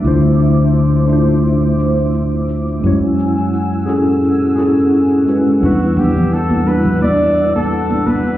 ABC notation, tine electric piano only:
X:1
M:4/4
L:1/8
Q:"Swing 16ths" 1/4=86
K:F#phr
V:1 name="Tine electric piano"
[A,DE=F=c]3 [A,DEFc]4- [A,DEFc] | [^G,CEFc]3 [CEF^GA]2 [CEFGA]2 [G,CEFB] | [G,DEBf]3 [G,DEFB]4- [G,DEFB] |]